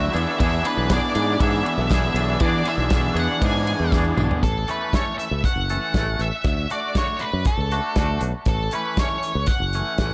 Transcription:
Already playing: overdriven electric guitar D3 D4, clean electric guitar F#3 A3 E4 F#4, lead electric guitar E5
0.13 fingered electric bass E2, clean electric guitar B3 D4 G#4, ride, tambourine
0.17 clean electric guitar E3
0.26 tambourine
0.39 fingered electric bass E2, clean electric guitar E3 B3 D4, lead electric guitar E5, kick, ride, tambourine
0.43 clean electric guitar G#4
0.52 tambourine
0.64 clean electric guitar D4 G#4, lead electric guitar B4, ride, tambourine
0.69 clean electric guitar B3
0.77 fingered electric bass B1
0.89 clean electric guitar E3 B3 D4 G#4, lead electric guitar D5, kick, snare, ride, tambourine
1.15 fingered electric bass G#2, clean electric guitar B3 D4 G#4, ride, tambourine
1.40 fingered electric bass G#2, clean electric guitar E3 B3 D4 G#4, lead electric guitar E5, kick, ride, tambourine
1.53 tambourine
1.66 ride
1.78 fingered electric bass B1, tambourine
1.89 clean electric guitar E3 B3 D4 G#4, lead electric guitar E5, kick, snare, ride, tambourine
2.02 tambourine
2.14 fingered electric bass B1, clean electric guitar D4 G#4, ride, tambourine
2.19 clean electric guitar B3
2.40 clean electric guitar E3 B3 D4 G#4, fingered electric bass E3, lead electric guitar D5, kick, ride, tambourine
2.54 tambourine
2.65 clean electric guitar B3 D4 G#4, lead electric guitar E5, ride, tambourine
2.78 fingered electric bass B1
2.90 clean electric guitar E3 B3 D4 G#4, kick, snare, ride, tambourine
3.15 fingered electric bass E2, clean electric guitar D4 G#4, ride, tambourine
3.19 clean electric guitar B3, lead electric guitar F#5
3.30 tambourine
3.41 fingered electric bass G#2, clean electric guitar E3 B3 D4 G#4, kick, ride, tambourine
3.46 lead electric guitar G#5
3.56 tambourine
3.67 ride, tambourine
3.80 fingered electric bass E2
3.91 clean electric guitar E3 B3 D4 G#4, kick, snare, tambourine
4.05 tambourine
4.16 fingered electric bass B1, clean electric guitar B3 D4 G#4, mid tom, tambourine
4.31 floor tom
4.43 fingered electric bass A1, lead electric guitar A4, kick, closed hi-hat
4.68 clean electric guitar E3 A3 C#4 A4, lead electric guitar B4, closed hi-hat
4.93 clean electric guitar E3 A3 C#4 A4, lead electric guitar C#5, kick, snare, closed hi-hat
5.18 lead electric guitar E5, closed hi-hat
5.31 fingered electric bass C#2
5.44 lead electric guitar F#5, kick, closed hi-hat
5.56 fingered electric bass F#1
5.69 clean electric guitar E3 A3 C#4 A4, closed hi-hat
5.94 fingered electric bass A1, clean electric guitar E3 A3 C#4 A4, kick, snare, closed hi-hat
6.19 fingered electric bass A1, lead electric guitar E5, closed hi-hat
6.44 fingered electric bass D2, lead electric guitar E5, kick, closed hi-hat
6.70 clean electric guitar A3 D4 F#4, lead electric guitar D5, closed hi-hat
6.95 clean electric guitar A3 D4 F#4, lead electric guitar C#5, kick, snare, closed hi-hat
7.19 lead electric guitar B4, closed hi-hat
7.33 fingered electric bass F#2
7.45 lead electric guitar A4, kick, closed hi-hat
7.58 fingered electric bass C#2
7.71 clean electric guitar A3 D4 F#4, closed hi-hat
7.96 fingered electric bass D2, clean electric guitar A3 D4 F#4, kick, snare, closed hi-hat
8.21 fingered electric bass B1, closed hi-hat
8.45 fingered electric bass A1, lead electric guitar A4, kick, closed hi-hat
8.71 clean electric guitar E3 A3 C#4, lead electric guitar B4, closed hi-hat
8.97 clean electric guitar E3 A3 C#4, lead electric guitar C#5, kick, snare, closed hi-hat
9.23 closed hi-hat
9.35 fingered electric bass C#2
9.46 lead electric guitar F#5, kick, closed hi-hat
9.60 fingered electric bass F#1
9.73 clean electric guitar E3 A3 C#4, closed hi-hat
9.98 fingered electric bass A1, clean electric guitar E3 A3, kick, snare, closed hi-hat
10.02 clean electric guitar C#4

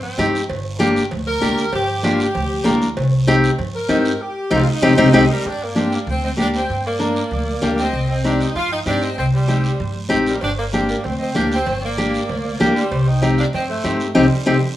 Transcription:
Already playing: upright bass G2
0.02 saxophone section C4
0.18 upright bass G2, nylon-string guitar C4 D#4 G4, cowbell, high conga, low conga, low timbale, short guiro
0.35 short guiro
0.49 upright bass G1, cowbell, long guiro
0.79 nylon-string guitar A#3 D4 G4, cowbell, high conga, short guiro
0.96 short guiro
1.11 upright bass D2, cowbell, high conga, low conga, long guiro
1.27 saxophone section A#4
1.41 upright bass D2, nylon-string guitar A#3 D4 G4, cowbell, high conga, short guiro
1.58 short guiro
1.73 upright bass G1, saxophone section G4, cowbell, high conga, low conga, long guiro
2.03 nylon-string guitar A#3 D4 G4, saxophone section F4, cowbell, high conga, short guiro
2.20 saxophone section G4, short guiro
2.35 upright bass D2, cowbell, high conga, low conga, long guiro
2.64 upright bass D2, nylon-string guitar A#3 D4 A#4, cowbell, high conga, low conga, low timbale, short guiro
2.82 short guiro
2.97 upright bass C2, cowbell, high conga, long guiro
3.27 nylon-string guitar C4 D#4 G4, cowbell, high conga, short guiro
3.44 short guiro
3.59 upright bass G2, cowbell, high conga, low conga, long guiro
3.75 saxophone section A#4
3.89 upright bass G2, nylon-string guitar C4 D#4 G4, cowbell, high conga, low timbale, short guiro
4.05 short guiro
4.21 saxophone section G4
4.51 upright bass C2, nylon-string guitar C4 D#4 G4, saxophone section F4, high conga, high timbale, long guiro
4.68 saxophone section D#4
4.82 upright bass C2, nylon-string guitar C4 D#4 G4, high conga, high timbale, long guiro
4.97 upright bass C2, nylon-string guitar C4 D#4 G4, high conga, high timbale, long guiro
5.13 upright bass C2, nylon-string guitar C4 D#4 G4, high conga, high timbale, long guiro
5.31 saxophone section G3, erhu A#4
5.45 upright bass G2, saxophone section D4, erhu G5, long guiro
5.62 saxophone section A#3, erhu D5
5.75 nylon-string guitar A#3 D4 G4, saxophone section C4, erhu G5, high conga, short guiro
5.92 saxophone section A#3, erhu D5, short guiro
6.07 upright bass D2, saxophone section C4, erhu G5, low conga, long guiro
6.22 saxophone section C4, erhu D#5, high conga
6.37 upright bass D2, nylon-string guitar A#3 D4 G4, saxophone section D4, erhu G5, high conga, short guiro
6.54 saxophone section C4, erhu G5, short guiro
6.70 upright bass G2, long guiro
6.86 saxophone section A#3, erhu D5
6.99 nylon-string guitar A#3 D4 A#4, high conga, short guiro
7.16 short guiro
7.31 upright bass D2, low conga, long guiro
7.47 high conga
7.62 upright bass D2, nylon-string guitar A#3 D4 G4, high conga, low conga, short guiro
7.78 saxophone section C4, erhu D#5, short guiro
7.93 upright bass C2, long guiro
8.10 saxophone section C4, erhu D#5
8.24 nylon-string guitar C4 D#4 G4, saxophone section D4, erhu G5, high conga, short guiro
8.40 saxophone section D#4, erhu G5, short guiro
8.55 upright bass G2, saxophone section F4, erhu C6, low conga, long guiro
8.72 saxophone section D#4, erhu G5
8.86 upright bass G2, nylon-string guitar C4 D#4 G4, saxophone section D4, erhu G5, high conga, short guiro
9.02 saxophone section C4, erhu D#5, short guiro
9.18 upright bass C2, saxophone section C4, erhu D#5, long guiro
9.35 saxophone section G3, erhu C5
9.48 nylon-string guitar C4 D#4 G4, high conga, short guiro
9.64 short guiro
9.80 upright bass G2, low conga, long guiro
9.96 high conga
10.09 upright bass A1, nylon-string guitar C4 D#4 G4, high conga, low conga, short guiro
10.26 saxophone section G3, erhu A#4, short guiro
10.41 upright bass G1, saxophone section D4, erhu G5, cowbell, long guiro
10.58 saxophone section A#3, erhu D5
10.73 nylon-string guitar A#3 D4 G4, saxophone section C4, erhu G5, high conga, short guiro
10.89 saxophone section A#3, erhu D5, short guiro
11.04 upright bass D2, saxophone section C4, erhu G5, cowbell, low conga, long guiro
11.20 saxophone section C4, erhu D#5
11.35 upright bass D2, nylon-string guitar A#3 D4 G4, saxophone section D4, erhu G5, high conga, low timbale, short guiro
11.51 saxophone section C4, erhu G5, short guiro
11.66 upright bass G1, cowbell, low conga, long guiro
11.81 saxophone section A#3, erhu D5
11.97 nylon-string guitar A#3 D4 G4, high conga, short guiro
12.14 short guiro
12.29 upright bass D2, cowbell, low conga, long guiro
12.45 high conga
12.60 upright bass D2, nylon-string guitar A#3 D4 G4, high conga, low timbale, short guiro
12.76 saxophone section G3, erhu C5, short guiro
12.91 upright bass C2, cowbell, long guiro
13.07 saxophone section D#4, erhu G5
13.22 nylon-string guitar C4 D#4 G4, saxophone section C4, erhu D#5, high conga, short guiro
13.38 saxophone section D4, erhu F5, short guiro
13.53 upright bass G2, saxophone section C4, erhu D#5, cowbell, low conga, long guiro
13.69 saxophone section A3, erhu C5
13.84 upright bass G2, nylon-string guitar C4 D#4 G4, high conga, short guiro
14.00 short guiro
14.15 upright bass C2, saxophone section G3, nylon-string guitar C4 D#4 G4, erhu C5, low conga, high timbale, long guiro
14.46 upright bass C2, nylon-string guitar C4 D#4 G4, low conga, high timbale, long guiro

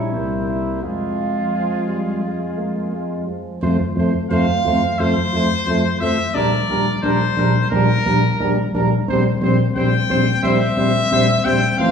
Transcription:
Already playing: tuba A#1, french horn C#4, trumpet E4 C#5
0.14 tuba C2, euphonium G3, french horn A#3, trumpet C5
0.47 trumpet E4
0.82 tuba F2, euphonium F3, french horn G#3, trumpet F4 G#4
1.54 euphonium F3
1.88 euphonium G3
2.23 euphonium G#3
2.58 euphonium A#3
2.93 euphonium G#3
3.28 euphonium F3
3.62 tuba F2, euphonium A3, french horn F4, trumpet C5
3.96 tuba F2, euphonium A3, french horn F4, trumpet C5
4.30 tuba F2, euphonium A3, french horn F4, trumpet C5 F5
4.64 tuba F2, euphonium A3, french horn F4, trumpet C5
4.99 tuba F2, euphonium A3, french horn F4, trumpet C5
5.32 tuba F2, euphonium A3, french horn F4, trumpet C5
5.66 tuba F2, euphonium A3, french horn F4, trumpet C5
6.00 tuba F2, euphonium A3, french horn F4, trumpet C5 E5
6.34 tuba A#1, euphonium G3, french horn D4, trumpet A#4 D5
6.68 tuba A#1, euphonium G3, french horn D4, trumpet A#4
7.02 tuba A#1, euphonium G3, french horn D4, trumpet A#4 C5
7.37 tuba A#1, euphonium G3, french horn D4, trumpet A#4
7.70 tuba A#1, euphonium G3, french horn D4, trumpet A#4
8.05 tuba A#1, euphonium G3, french horn D4, trumpet A#4
8.39 tuba A#1, euphonium G3, french horn D4, trumpet A#4
8.74 tuba A#1, euphonium G3, french horn D4, trumpet A#4
9.07 tuba A#1, euphonium G3, french horn C4, trumpet C5
9.41 tuba A#1, euphonium G3, french horn C4, trumpet C5
9.76 tuba A#1, euphonium G3, french horn C4, trumpet C5 G5
10.09 tuba A#1, euphonium G3, french horn C4, trumpet C5
10.43 tuba A#1, euphonium G3, french horn C4, trumpet C5 E5
10.76 tuba A#1, euphonium G3, french horn C4, trumpet C5
11.11 tuba A#1, euphonium G3, french horn C4, trumpet C5
11.44 tuba A#1, euphonium G3, french horn C4, trumpet C5 G5
11.78 tuba A1, euphonium F3, french horn C4, trumpet C5 F5

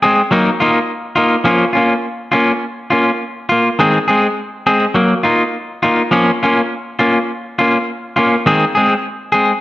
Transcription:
0.03 clean electric guitar G#3 C4 G#4
0.31 clean electric guitar F#3 A#3 D#4, muted clean electric guitar stroke
0.60 clean electric guitar A#3 D#4 F4
1.16 clean electric guitar A#3 D#4 F4
1.44 clean electric guitar F3 A#3 C#4 F4
1.73 clean electric guitar A#3 C#4 F4
2.32 clean electric guitar A#3 C#4 F4
2.90 clean electric guitar A#3 C#4 F4
3.49 clean electric guitar A#3 F4
3.79 clean electric guitar D#3 G#3 C4 G#4
4.08 clean electric guitar G#3 C4 G#4
4.67 clean electric guitar G#3 C4 G#4
4.94 clean electric guitar F#3 A#3, muted clean electric guitar stroke
5.23 clean electric guitar A#3 D#4 F4
5.83 clean electric guitar A#3 D#4 F4
6.11 clean electric guitar F3 A#3 C#4, muted clean electric guitar stroke
6.43 clean electric guitar A#3 C#4 F4
6.99 clean electric guitar A#3 C#4 F4
7.59 clean electric guitar A#3 C#4 F4
8.16 clean electric guitar A#3 C#4 F4
8.46 clean electric guitar D#3 G#3 C4 G#4
8.75 clean electric guitar G#3 C4 G#4
9.32 clean electric guitar G#3 C4 G#4

